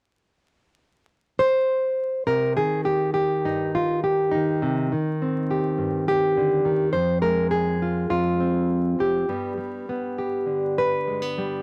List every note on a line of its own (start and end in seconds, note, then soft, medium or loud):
1.39 2.23 C5 medium
2.27 2.56 C3 medium
2.27 2.56 A#4 medium
2.56 4.33 D#3 soft
2.56 2.85 G#4 medium
2.85 3.13 G4 medium
3.14 3.73 G4 medium
3.45 4.59 G2 medium
3.45 4.30 D#4 medium
3.75 4.03 F4 medium
4.04 4.92 G4 medium
4.31 4.91 D#3 soft
4.31 6.07 D#4 medium
4.62 4.92 C3 medium
4.92 6.64 D#3 soft
5.22 6.92 C4 soft
5.51 6.07 G4 soft
5.78 6.91 G2 medium
6.08 6.92 G4 medium
6.37 6.66 D3 medium
6.65 6.94 D#3 soft
6.93 8.09 F2 medium
6.93 7.22 C5 loud
7.22 9.24 G#3 medium
7.22 7.50 A#4 medium
7.51 8.10 G#4 medium
7.82 8.09 F4 soft
8.10 8.98 F2 medium
8.10 9.28 F4 medium
8.40 9.25 C4 soft
8.99 9.28 F2 medium
8.99 10.17 G4 medium
9.29 11.62 G2 medium
9.29 9.57 G3 soft
9.29 9.88 B3 soft
9.57 11.38 G3 soft
9.89 11.07 B3 soft
10.18 10.78 G4 soft
10.46 11.62 D3 medium
10.78 11.62 B4 medium
11.08 11.22 G#3 soft
11.22 11.62 B3 soft
11.38 11.62 G3 soft